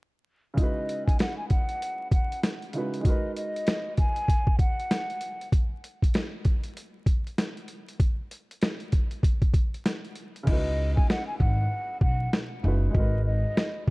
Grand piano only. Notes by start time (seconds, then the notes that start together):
0.54 C#3 G#3 D#4
0.60 E4 F#4 B4
2.73 C#3 G#3 D#4 E4 F#4
2.78 B4
3.01 G#3 D#4
3.05 F#4 A#4
3.10 B4
10.43 C#3 G#3 D#4
10.49 E4 F#4 B4
12.63 C#3 G#3 D#4 E4 F#4
12.68 B4
12.90 G#3 D#4
12.95 F#4 A#4
13.00 B4